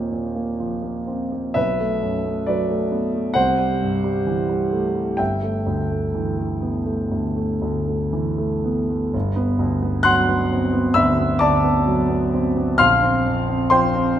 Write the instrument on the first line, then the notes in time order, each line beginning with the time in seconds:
grand piano
Already playing: A#2 F3 A#3 C4
0.12 A#2
0.35 A#3
0.60 F3
0.83 A#3
1.07 C4
1.32 A#3
1.54 B1 B4 E5
1.80 A3
2.02 F#2
2.25 A3
2.46 F#3 B4 D5
2.71 A3
2.92 B3
3.15 A3
3.34 C2 C5 F#5
3.58 G3
3.81 G2
4.04 G3
4.27 E3
4.49 G3
4.73 A3
4.95 G3
5.17 G1 E5 G5
5.43 A3
5.67 D2
5.91 A3
6.15 E3
6.38 A3
6.62 B3
6.86 A3
7.12 D2
7.36 A3
7.62 D2
7.88 A3
8.13 E3
8.38 A3
8.65 B3
8.90 A3
9.14 G1
9.36 B3
9.59 D2
9.82 B3
10.03 F#3 F#5 C6 F#6
10.29 B3
10.53 C4
10.73 B3
10.94 D2 E5 B5 E6
11.19 B3
11.39 D2 D5 A5 D6
11.64 B3
11.87 F#3
12.09 B3
12.33 C4
12.57 B3
12.78 A#1 F5 C6 F6
13.03 C4
13.26 F2
13.48 C4
13.70 F3 C5 G5 C6
13.94 C4
14.16 D4